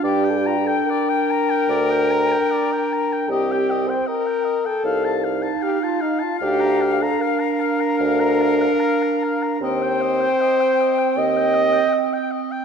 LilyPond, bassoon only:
\new Staff \with { instrumentName = "Bassoon" } { \clef bass \time 4/4 \key bes \major \tempo 4 = 76 g,4 r4 d,4 r4 | c,4 r4 c,4 r4 | d,4 r4 d,4 r4 | ees,4 r4 ees,4 r4 | }